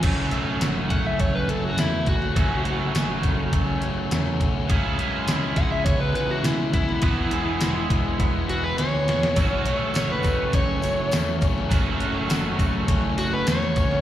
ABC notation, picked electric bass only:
X:1
M:4/4
L:1/8
Q:1/4=103
K:F#m
V:1 name="Picked electric bass" clef=bass
F,,, B,,, F,,, F,,, F,,, F,,, E,, F,,, | F,,,2 F,,, F,,, F,,,2 E,, B,,, | C,, F,, C,, C,, C,, C,, B,, F,, | E,,,2 E,,, E,,, E,,,2 D,, E,, |
F,,, B,,, F,,, F,,, F,,, F,,, E,, F,,, | F,,,2 F,,, F,,, F,,,2 E,, D,, |]